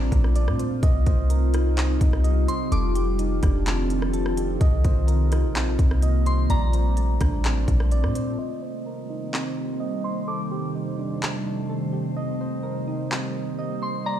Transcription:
Already playing: A1 A3 C4 D4 F4 C5 D5
0.12 A#1, kick, closed hi-hat
0.24 cross-stick
0.36 D5, closed hi-hat
0.47 A#2, cross-stick
0.59 C5, closed hi-hat
0.83 C2 C3 G3 D#4 D#5, kick, closed hi-hat
1.06 C2 C5, kick, closed hi-hat
1.30 A#4, closed hi-hat
1.54 D#4, cross-stick, closed hi-hat
1.77 C4, clap, closed hi-hat
2.01 C2, kick, closed hi-hat
2.13 cross-stick
2.24 D#5, closed hi-hat
2.48 C5 C6, closed hi-hat
2.72 F1 D#3 F3 C4 G4 A4 D6, closed hi-hat
2.95 G4, closed hi-hat
3.19 D#4, closed hi-hat
3.43 F1 D4, kick, cross-stick, closed hi-hat
3.66 A3, clap, closed hi-hat
3.90 closed hi-hat
4.02 cross-stick
4.14 A4, closed hi-hat
4.26 cross-stick
4.37 G4, closed hi-hat
4.61 C2 C3 G3 A#3 D#5, kick, closed hi-hat
4.84 C2 C5, kick, closed hi-hat
5.07 A#4, closed hi-hat
5.32 D#4, cross-stick, closed hi-hat
5.44 A#1
5.55 C4, clap, closed hi-hat
5.79 C2, kick, closed hi-hat
5.91 cross-stick
6.02 D#5, closed hi-hat
6.26 C5 C6, closed hi-hat
6.50 A#1 A3 C4 D5 A#5, closed hi-hat
6.73 C5, closed hi-hat
6.97 A3, closed hi-hat
7.20 A1 D4, kick, cross-stick, closed hi-hat
7.44 C4, clap, closed hi-hat
7.68 A#1, kick, closed hi-hat
7.80 cross-stick
7.91 D5, closed hi-hat
8.03 A#2, cross-stick
8.15 C5, closed hi-hat
8.39 C3 D#3 G3 A#3 C5 D#5
8.63 C5
8.86 A#4
9.10 D#4
9.33 C4, clap
9.80 D#5
10.04 C5 C6
10.28 F2 A3 A4 D6
10.51 G4
10.75 D#4
10.99 D4
11.22 A3, clap
11.70 A4
11.93 G4
12.16 G3 A#3 D#5
12.41 C5
12.63 A#4
12.88 D#4
13.11 C4, clap
13.59 D#5
13.82 C5 C6
14.06 D5 A#5

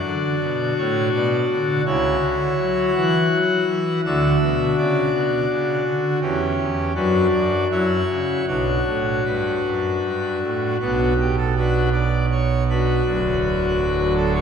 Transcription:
Already playing: D4 F#4 D5
0.05 D3
0.42 B2
0.78 A2 C#5
1.14 B2 D5
1.51 D3
1.86 C#2 C#3 E4 F#4 C#5
2.22 D3
2.58 F#3
2.95 E3 F#5
3.33 F#3
3.68 E3
4.05 D2 D3 D4 F#4 E5
4.42 B2
4.77 C#3 D5
5.14 B2
5.50 C#3
5.86 D3
6.21 E2 E3 C#4 G4
6.59 E2
6.95 F#2 F#3 D4 F#4 B4
7.32 F#2 D5
7.71 F#2 F#3 E4 F#4 C#5
8.08 C#3
8.47 B1 B2 D4 F#4 C#5
8.86 A2
9.25 G2 B4
9.65 F#2
10.04 G2
10.42 A2
10.80 B1 B2 B3 D4 F#4
11.20 G4
11.38 A4
11.57 D4 F#4 B4
11.93 D5
12.32 C#5
12.69 D4 F#4 B4
13.05 D1 D2 F#3 D4
14.16 A4
14.34 C#5

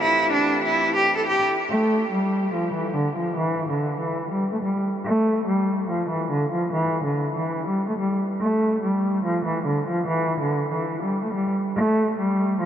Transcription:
Already playing: A3 C4
0.02 E3 E4 G4
0.33 D4
0.65 E4
0.96 G4
1.17 A4
1.28 G4
1.70 A3
2.11 G3
2.53 F3
2.74 E3
2.95 D3
3.16 F3
3.37 E3
3.70 D3
4.00 E3
4.32 G3
4.52 A3
4.63 G3
5.05 A3
5.47 G3
5.89 F3
6.10 E3
6.31 D3
6.52 F3
6.73 E3
7.05 D3
7.36 E3
7.67 G3
7.88 A3
7.99 G3
8.41 A3
8.83 G3
9.24 F3
9.45 E3
9.67 D3
9.88 F3
10.08 E3
10.41 D3
10.72 E3
11.03 G3
11.24 A3
11.34 G3
11.76 A3
12.19 G3
12.60 F3

